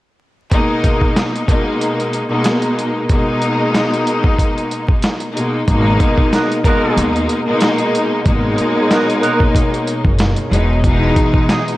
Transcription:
0.51 string section B2 G#3 A#3 D#4, kick, closed hi-hat
0.84 kick, closed hi-hat
1.01 kick
1.16 snare, closed hi-hat
1.36 closed hi-hat
1.47 string section B2 G#3 A#3 D#4, kick, closed hi-hat
1.81 closed hi-hat
2.00 closed hi-hat
2.13 closed hi-hat
2.28 string section B2 G#3 A#3 D#4
2.44 snare, closed hi-hat
2.62 closed hi-hat
2.79 closed hi-hat
3.09 string section B2 G#3 A#3 D#4, kick, closed hi-hat
3.42 closed hi-hat
3.74 snare, closed hi-hat
3.94 closed hi-hat
4.07 closed hi-hat
4.24 kick
4.39 kick, closed hi-hat
4.58 closed hi-hat
4.71 closed hi-hat
4.89 kick
5.02 snare, closed hi-hat
5.20 closed hi-hat
5.33 string section B2 G#3 A#3 D#4
5.37 closed hi-hat
5.66 upright bass G#1, string section B2 G#3 A#3 D#4, analog synth pad B2 G#4 A#4 D#5, kick, closed hi-hat
6.00 kick, closed hi-hat
6.18 kick
6.33 horn section D#3 B3 A#4, snare, closed hi-hat
6.52 closed hi-hat
6.64 string section B2 G#3 A#3 D#4, horn section D#3 B3 A#4, kick, closed hi-hat
6.97 upright bass D#2, closed hi-hat
7.16 closed hi-hat
7.29 closed hi-hat
7.47 string section B2 G#3 A#3 D#4
7.60 snare, closed hi-hat
7.78 closed hi-hat
7.95 closed hi-hat
8.26 upright bass G#1, string section B2 G#3 A#3 D#4, analog synth pad C#5, kick, closed hi-hat
8.58 closed hi-hat
8.91 horn section D#3 B3 A#4, snare, closed hi-hat
9.10 closed hi-hat
9.21 horn section D#3 B3 A#4, closed hi-hat
9.40 kick
9.55 kick, closed hi-hat
9.74 closed hi-hat
9.87 closed hi-hat
10.05 upright bass F#1, kick
10.19 snare, closed hi-hat
10.36 closed hi-hat
10.50 upright bass E1, string section B2 E3 G#3 D#4, analog synth pad E3 G#4 D#5, closed hi-hat
10.84 string section B2 E3 G#3 D#4, kick, closed hi-hat
11.16 kick, closed hi-hat
11.34 kick
11.49 horn section E3 D#4 G#4, snare, closed hi-hat
11.68 closed hi-hat

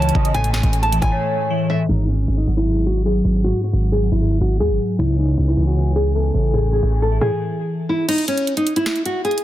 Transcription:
Already playing: 808-style bass C#2, synth keys C#3 E3, string section E3 G#3 B3 C#4, soft synth lead C#5, nylon-string guitar A5
0.02 closed hi-hat
0.09 closed hi-hat
0.15 808-style bass A1, synth keys C#3, soft synth lead D#5, kick
0.25 closed hi-hat
0.34 synth keys A2, string section A3, nylon-string guitar G#5, closed hi-hat
0.44 closed hi-hat
0.53 nylon-string guitar G#5, snare, closed hi-hat
0.63 808-style bass A1, kick, closed hi-hat
0.73 closed hi-hat
0.83 nylon-string guitar A5, closed hi-hat
0.92 synth keys E3, closed hi-hat
1.02 808-style bass A2, nylon-string guitar G#5, kick, closed hi-hat
1.12 synth keys A2, soft synth lead C#5
1.31 synth keys A2
1.50 synth keys E3
1.70 synth keys A2, nylon-string guitar E5
1.89 808-style bass G#1, synth keys G#2, nylon-string guitar D#4
2.08 nylon-string guitar C#4
2.28 808-style bass G#1
2.37 nylon-string guitar D#4
2.47 808-style bass G#1, synth keys F#3
2.57 nylon-string guitar E4
2.67 synth keys G#2
2.86 synth keys G#2, nylon-string guitar F#4
3.05 synth keys F#3, nylon-string guitar G#4
3.25 808-style bass G#1, synth keys G#2
3.44 synth keys G#2, nylon-string guitar F#4
3.64 nylon-string guitar F#4
3.73 808-style bass G#1
3.92 nylon-string guitar G#4
4.02 synth keys F#3
4.12 808-style bass G#1, nylon-string guitar E4
4.22 synth keys G#2
4.41 808-style bass G#1, synth keys G#2, nylon-string guitar F#4
4.60 808-style bass D#2, synth keys F#3, nylon-string guitar G#4
4.70 808-style bass G#1
4.79 synth keys G#2
4.99 808-style bass C#2, synth keys C#3, string section E3 B3 C#4 G#5, nylon-string guitar E4
5.18 nylon-string guitar D#4
5.38 808-style bass C#2
5.48 nylon-string guitar E4
5.57 808-style bass C#2, synth keys E3
5.67 nylon-string guitar F#4
5.76 synth keys C#3
5.96 synth keys C#3, nylon-string guitar G#4
6.15 synth keys E3, nylon-string guitar A4
6.34 808-style bass A1, synth keys C#3
6.54 synth keys A2, string section E3 A3, nylon-string guitar G#4
6.73 nylon-string guitar G#4
6.83 808-style bass A1
7.02 nylon-string guitar A4
7.12 synth keys E3
7.21 808-style bass A2, nylon-string guitar G#4
7.89 nylon-string guitar E4
8.08 nylon-string guitar D#4, closed hi-hat, crash
8.18 closed hi-hat
8.28 nylon-string guitar C#4, closed hi-hat
8.37 closed hi-hat
8.47 closed hi-hat
8.57 nylon-string guitar D#4, closed hi-hat
8.67 closed hi-hat
8.76 nylon-string guitar E4, closed hi-hat
8.86 snare, closed hi-hat
8.96 closed hi-hat
9.05 nylon-string guitar F#4, closed hi-hat
9.25 nylon-string guitar G#4, closed hi-hat
9.31 closed hi-hat
9.38 closed hi-hat

